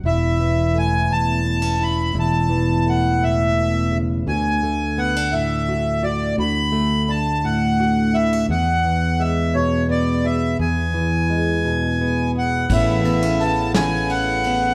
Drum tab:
CC |------|------|------|------|
RD |------|------|------|------|
SD |------|------|------|------|
BD |------|------|------|------|

CC |------|------|x-----|
RD |------|------|-xxxxx|
SD |------|------|---o--|
BD |------|------|o-----|